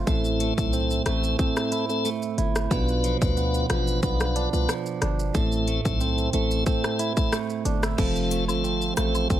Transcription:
Already playing: A3 C4 F4
0.07 A1 A2 A3 C4 E4 A4, kick, shaker
0.25 shaker
0.40 A3, closed hi-hat, shaker
0.57 B1 A3 C4 E4 A4, kick, shaker
0.73 C4, shaker
0.91 shaker
1.06 A1 A3 C4 E4 A4, cross-stick, closed hi-hat, shaker
1.24 shaker
1.39 A3 C4 E4 A4, kick, shaker
1.56 cross-stick, shaker
1.72 E4, closed hi-hat, shaker
1.89 A3 C4 E4 A4, shaker
2.05 A3, shaker
2.22 shaker
2.38 G1 E4, closed hi-hat, shaker
2.56 cross-stick, shaker
2.71 B1 B2 B3 D4 F4 B4, kick, shaker
2.88 shaker
3.04 F3, closed hi-hat, shaker
3.21 D2 B3 D4 F4 B4, kick, shaker
3.37 B3, shaker
3.54 shaker
3.70 A1 F3 B3 D4 F4 B4, cross-stick, closed hi-hat, shaker
3.87 shaker
4.03 B1 B3 D4 F4 B4, kick, shaker
4.20 cross-stick, shaker
4.36 D4, closed hi-hat, shaker
4.53 C2 B3 D4 F4 B4, shaker
4.69 F3, cross-stick, shaker
4.86 shaker
5.02 G1 D4, cross-stick, closed hi-hat, shaker
5.19 shaker
5.35 A1 A2 A3 C4 E4 A4, kick, shaker
5.52 shaker
5.68 A3, closed hi-hat, shaker
5.85 B1 A3 C4 E4 A4, kick, shaker
6.00 C4, shaker
6.18 shaker
6.33 A1 A3 C4 E4 A4, closed hi-hat, shaker
6.51 shaker
6.66 A3 C4 E4 A4, kick, shaker
6.84 cross-stick, shaker
6.99 E4, closed hi-hat, shaker
7.17 A3 C4 E4 A4, kick, shaker
7.32 A3, cross-stick, shaker
7.50 shaker
7.65 G1 D4, closed hi-hat, shaker
7.83 E4, cross-stick, shaker
7.98 F1 F3 A3 C4 F4 A4, kick, crash, shaker
8.16 shaker
8.31 A3, closed hi-hat, cabasa, shaker
8.48 G1 A3 C4 F4 A4, high woodblock, shaker
8.64 C4, shaker
8.82 shaker
8.97 A1 A3 C4 F4 A4, cross-stick, closed hi-hat, cabasa, shaker
9.15 high woodblock, shaker
9.30 G1 A3 C4 F4 A4, kick, shaker

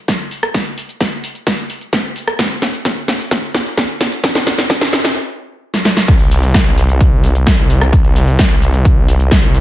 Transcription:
0.08 kick, snare, closed hi-hat, shaker
0.20 closed hi-hat
0.31 open hi-hat, shaker
0.43 cross-stick, closed hi-hat, shaker
0.54 kick, snare, closed hi-hat, shaker
0.66 closed hi-hat
0.78 open hi-hat, shaker
0.89 closed hi-hat, shaker
1.01 kick, snare, closed hi-hat, shaker
1.12 closed hi-hat
1.24 open hi-hat, shaker
1.35 closed hi-hat, shaker
1.47 kick, snare, closed hi-hat, shaker
1.58 closed hi-hat
1.70 open hi-hat, shaker
1.81 closed hi-hat, shaker
1.93 kick, snare, closed hi-hat, shaker
2.04 closed hi-hat
2.16 open hi-hat, shaker
2.27 cross-stick, closed hi-hat, shaker
2.39 kick, snare, closed hi-hat, shaker
2.51 closed hi-hat
2.62 snare, open hi-hat, shaker
2.74 closed hi-hat, shaker
2.85 kick, snare, closed hi-hat, shaker
2.97 closed hi-hat
3.08 snare, open hi-hat, shaker
3.20 closed hi-hat, shaker
3.31 kick, snare, closed hi-hat, shaker
3.43 closed hi-hat
3.54 snare, open hi-hat, shaker
3.66 closed hi-hat, shaker
3.77 kick, snare, closed hi-hat, shaker
3.89 closed hi-hat
4.01 snare, open hi-hat, shaker
4.12 closed hi-hat, shaker
4.24 kick, snare, closed hi-hat, shaker
4.35 snare, closed hi-hat
4.47 snare, open hi-hat, shaker
4.58 snare, closed hi-hat, shaker
4.70 kick, snare, closed hi-hat, shaker
4.81 snare, closed hi-hat
4.93 snare, open hi-hat, shaker
5.05 snare, closed hi-hat, shaker
5.74 snare
5.85 snare
5.97 snare
6.08 C2, kick, closed hi-hat, crash, shaker
6.20 closed hi-hat
6.31 open hi-hat, shaker
6.43 closed hi-hat, shaker
6.54 kick, snare, closed hi-hat, shaker
6.66 closed hi-hat
6.78 open hi-hat, shaker
6.89 closed hi-hat, shaker
7.01 kick, closed hi-hat, shaker
7.24 open hi-hat, shaker
7.35 closed hi-hat, shaker
7.47 kick, snare, closed hi-hat, shaker
7.58 closed hi-hat
7.70 open hi-hat, shaker
7.81 cross-stick, closed hi-hat, shaker
7.93 kick, closed hi-hat, shaker
8.04 closed hi-hat
8.16 open hi-hat, shaker
8.28 closed hi-hat, shaker
8.39 kick, snare, closed hi-hat, shaker
8.51 closed hi-hat
8.62 open hi-hat, shaker
8.74 closed hi-hat, shaker
8.85 kick, closed hi-hat, shaker
9.08 open hi-hat, shaker
9.20 closed hi-hat, shaker
9.31 kick, snare, closed hi-hat, shaker
9.43 closed hi-hat
9.54 open hi-hat, shaker

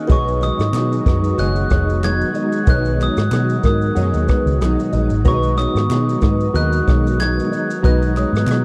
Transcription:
Already playing: D#3 A#3 F#4 G#4 A#4 C#5 D#5
0.07 B1 B2 F#3 G#3 B3 F#4 G#4 B4 C#5 D#5, kick, closed hi-hat, shaker
0.12 D#4 C#6
0.28 shaker
0.41 G#3 D#4 D#5 D#6, clap, closed hi-hat, shaker
0.45 F#3
0.59 G#2, cross-stick, shaker
0.73 B2 F#3 G#3 D#4, cross-stick, clap, closed hi-hat, shaker
0.93 shaker
1.06 F#2 F#3 G#3 D#4 B4, kick, cross-stick, closed hi-hat, shaker
1.24 shaker
1.38 F#1 B2 F#3 G#3 F#4 G#4 C#5 D#5 F#6, closed hi-hat, shaker
1.42 D#4
1.56 shaker
1.70 F1 F#3 G#3 D#4 C#5, kick, cross-stick, closed hi-hat, shaker
1.89 shaker
2.03 B2 F#3 G#3 D#4 G#6, cross-stick, clap, closed hi-hat, shaker
2.21 shaker
2.34 F#3 G#3 D#4 D#5, closed hi-hat, shaker
2.52 shaker
2.65 B1 B2 F#3 G#3 D#4 F#4 G#4 B4 C#5 D#5, kick, closed hi-hat, shaker
2.70 F#6
2.85 shaker
2.99 F#3 G#3 D#4 C#5 D#6, clap, closed hi-hat, shaker
3.17 G#2, cross-stick, shaker
3.32 B2 F#3 G#3 D#4, cross-stick, clap, closed hi-hat, shaker
3.49 shaker
3.63 G#2 G#3 D#4 A#4 D#6, kick, cross-stick, closed hi-hat, shaker
3.68 F#3
3.82 shaker
3.95 F#2 B2 F#3 G#3 F#4 G#4 C#5 D#5, closed hi-hat, shaker
4.00 D#4
4.14 D#2, shaker
4.28 G#3 D#4 B4, kick, cross-stick, closed hi-hat, shaker
4.32 F#3
4.46 C#2, shaker
4.61 B1 B2 F#3 G#3 D#4, cross-stick, clap, closed hi-hat, shaker
4.80 shaker
4.93 A#1 G#3 D#4 D#5, closed hi-hat, shaker
4.97 F#3
5.10 G#1, shaker
5.25 B1 B2 F#3 G#3 B3 D#4 F#4 B4 C#5 A#5 C#6, kick, closed hi-hat, shaker
5.34 D#5
5.43 shaker
5.57 G#3 D#4 C#5 D#6, clap, closed hi-hat, shaker
5.62 F#3
5.75 G#2, cross-stick, shaker
5.90 B2 F#3 G#3 D#4, cross-stick, clap, closed hi-hat, shaker
6.09 shaker
6.21 G#2 G#3 D#4 B4, kick, cross-stick, closed hi-hat, shaker
6.26 F#3
6.40 shaker
6.54 D#2 B2 F#3 G#3 F#4 A#4 B4 D#5 F#6, closed hi-hat, shaker
6.58 D#4
6.73 shaker
6.87 B1 F#3 G#3 D#4 C#5, kick, cross-stick, closed hi-hat, shaker
7.07 shaker
7.19 B2 F#3 G#3 D#4 G#6, cross-stick, clap, closed hi-hat, shaker
7.40 shaker
7.51 F#3 G#3 D#4 D#5, closed hi-hat, shaker
7.70 shaker
7.82 B1 B2 F#3 G#3 D#4 F#4 B4 D#5 A#5 F#6, kick, closed hi-hat, shaker
8.02 shaker
8.16 F#3 G#3 D#4 C#5 D#6, clap, closed hi-hat, shaker
8.33 G#2, cross-stick, shaker
8.47 B2 F#3 G#3 D#4, clap, closed hi-hat, shaker
8.51 cross-stick

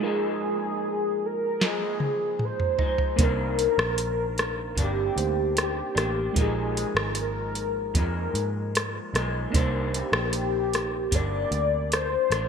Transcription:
Already playing: G#4
0.00 A#2 F3 G#3 D#4 F4 A#4
0.04 G#3 D#4
1.26 A#4
1.60 A#2 F3 G#3 D#4, snare
1.65 G#4
2.00 high tom
2.39 mid tom
2.45 C5
2.60 mid tom
2.79 F3 G#3 D#4, floor tom
2.98 floor tom
3.16 C2 C3 D#3 A#3 D4 D#4, kick, closed hi-hat
3.20 A#3 D4 A#4 C5
3.59 closed hi-hat
3.78 A#1, cross-stick
3.98 closed hi-hat
4.38 cross-stick, closed hi-hat
4.75 G1 C3 A#3 D4, kick, closed hi-hat
4.83 G4
5.16 D2 A#3 D4 D#4 C5, closed hi-hat
5.57 cross-stick, closed hi-hat
5.62 G4
5.95 A1 D#3 A#3 D4, cross-stick, closed hi-hat
6.33 A#1 A#2 G#3 D#4 F4, kick, closed hi-hat
6.37 F3 G#3 D#4 G#4 A#4
6.77 closed hi-hat
6.95 G#1, cross-stick
7.15 closed hi-hat
7.21 A#4
7.55 closed hi-hat
7.94 F2 A#2 F3 G#3 D#4, kick, closed hi-hat
8.00 A#4
8.34 G#2, closed hi-hat
8.75 cross-stick, closed hi-hat
9.14 B1 G#3 D#4, cross-stick, closed hi-hat
9.18 F3
9.50 C2 C3 D#3 A#3 D4 D#4, kick, closed hi-hat
9.56 A#3 D4 C5
9.94 G4, closed hi-hat
10.12 A#1, cross-stick
10.33 closed hi-hat
10.73 cross-stick, closed hi-hat
11.11 G1 C3 A#3 D4 D5, kick, closed hi-hat
11.51 D2, closed hi-hat
11.92 C5, cross-stick, closed hi-hat
12.30 A1 D#3 A#3 D4, cross-stick, closed hi-hat

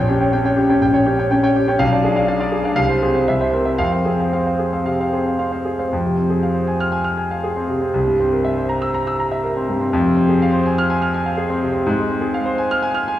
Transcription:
Already playing: A#1 C#5 G5
0.09 C#4 G4
0.20 C#5 G5
0.33 C#4 G5
0.45 C#5 G5
0.57 G4
0.69 C#4 C#5 G5
0.82 A#1 G5
0.94 C#5 G5
1.06 C#4 G4
1.19 C#5 G5
1.31 C#4 G5
1.43 C#5 G5
1.56 G4
1.68 C#4 C#5 G5
1.79 B1 F5
1.93 D5 F5
2.04 D4 G#4
2.16 D5 F5
2.28 D4 F5
2.40 D5 F5
2.52 G#4
2.64 D4 D5 F5
2.76 C2 F5
2.89 C5 F5
3.02 C4 G#4
3.15 C5 F5
3.28 C2 E5
3.41 C5 E5
3.53 C4 A#4
3.65 C5 E5
3.78 F2 F5
3.92 C5 F5
4.05 C4 G#4
4.20 C5 F5
4.33 C4 F5
4.46 C5 F5
4.59 G#4
4.72 C4 C5 F5
4.86 C3 F5
5.00 C5 F5
5.13 C4 G#4
5.26 C5 F5
5.39 C4 F5
5.51 C5 F5
5.65 G#4
5.79 C4 C5 F5
5.93 F2
6.05 C3
6.18 C4
6.30 G#4
6.43 F5
6.55 C5
6.67 G#5
6.80 F6
6.92 G#5
7.04 F6
7.17 G#5
7.31 F5
7.44 G#4
7.56 C4
7.68 C3
7.81 C4
7.94 C2
8.07 G2
8.20 C4
8.32 A#4
8.44 E5
8.57 C5
8.69 A#5
8.82 E6
8.94 A#5
9.07 E6
9.20 A#5
9.31 E5
9.44 A#4
9.56 C4
9.68 G2
9.81 C4
9.93 F2
10.04 C3
10.16 C4
10.29 G#4
10.42 F5
10.53 C5
10.66 G#5
10.78 F6
10.90 G#5
11.02 F6
11.14 G#5
11.26 F5
11.37 G#4
11.50 C4
11.62 C3
11.74 C4
11.86 G#2
11.98 G#3
12.10 C4
12.21 G#4
12.34 F5
12.46 C5
12.58 G#5
12.71 F6
12.82 G#5
12.94 F6
13.08 G#5

